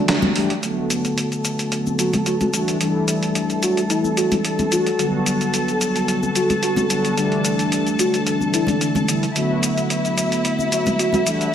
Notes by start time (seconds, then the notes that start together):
Already playing: E3 G3 A3 D4 F#4
0.08 D4, snare, closed hi-hat
0.22 closed hi-hat, high conga, low conga
0.35 E3 G3 A3 D4 G4, open hi-hat
0.50 closed hi-hat
0.62 D3 F#3 A3 B3 F#4 A4 A5, closed hi-hat, cabasa
0.90 closed hi-hat, cabasa
1.05 closed hi-hat, cabasa
1.18 closed hi-hat, cabasa
1.32 closed hi-hat, cabasa
1.45 closed hi-hat, cabasa
1.59 closed hi-hat, cabasa
1.72 closed hi-hat, cabasa
1.87 high conga, cabasa
1.99 F#4, closed hi-hat, cabasa
2.13 closed hi-hat, high conga, low conga, cabasa
2.26 F#4, closed hi-hat, cabasa
2.41 F#4, closed hi-hat, high conga, low conga, cabasa
2.53 E3 G3 A3 D4 F#4, closed hi-hat, cabasa
2.68 closed hi-hat, cabasa
2.80 E3 G3 A3 D4 E4, closed hi-hat, cabasa
3.08 closed hi-hat, cabasa
3.23 closed hi-hat, cabasa
3.35 closed hi-hat, cabasa
3.50 closed hi-hat, cabasa
3.62 F#4, closed hi-hat, cabasa
3.77 closed hi-hat, cabasa
3.90 E4, closed hi-hat, cabasa
4.04 high conga, cabasa
4.17 F#4, closed hi-hat, cabasa
4.31 closed hi-hat, high conga, low conga, cabasa
4.45 closed hi-hat, cabasa
4.59 closed hi-hat, high conga, low conga, cabasa
4.71 E3 G3 A3 D4 F#4, closed hi-hat, cabasa
4.87 closed hi-hat, cabasa
4.98 D3 F#3 G3 B3 F#4, closed hi-hat, cabasa
5.26 closed hi-hat, cabasa
5.41 closed hi-hat, cabasa
5.54 closed hi-hat, cabasa
5.68 closed hi-hat, cabasa
5.81 closed hi-hat, cabasa
5.96 closed hi-hat, cabasa
6.08 closed hi-hat, cabasa
6.23 high conga, cabasa
6.35 F#4, closed hi-hat, cabasa
6.50 closed hi-hat, high conga, low conga, cabasa
6.63 F#4, closed hi-hat, cabasa
6.76 F#4, closed hi-hat, high conga, low conga, cabasa
6.89 D3 F#3 G3 B3 F#4, closed hi-hat, cabasa
7.05 closed hi-hat, cabasa
7.16 D3 E3 G3 A3 D4, closed hi-hat, cabasa
7.32 closed hi-hat
7.45 closed hi-hat, cabasa
7.59 closed hi-hat, cabasa
7.72 closed hi-hat, cabasa
7.87 closed hi-hat, cabasa
7.99 F#4, closed hi-hat, cabasa
8.14 closed hi-hat, cabasa
8.27 closed hi-hat, cabasa
8.41 high conga, cabasa
8.54 E4, closed hi-hat, cabasa
8.67 D4, closed hi-hat, high conga, low conga, cabasa
8.81 D4, closed hi-hat, cabasa
8.95 closed hi-hat, high conga, low conga, cabasa
9.08 D3 E3 G3 A3 E4, closed hi-hat, cabasa
9.23 closed hi-hat, cabasa
9.34 D3 F#3 A3 B3 E4 F#4 E5, closed hi-hat, cabasa
9.63 closed hi-hat, cabasa
9.78 closed hi-hat, cabasa
9.90 closed hi-hat, cabasa
10.05 closed hi-hat, cabasa
10.18 closed hi-hat, cabasa
10.32 closed hi-hat, cabasa
10.45 closed hi-hat, cabasa
10.59 high conga, cabasa
10.72 F#4, closed hi-hat, cabasa
10.86 closed hi-hat, high conga, low conga, cabasa
10.99 F#4, closed hi-hat, cabasa
11.13 F#4, closed hi-hat, high conga, low conga, cabasa
11.25 E3 G3 A3 D4 F#4, closed hi-hat, cabasa
11.41 closed hi-hat, cabasa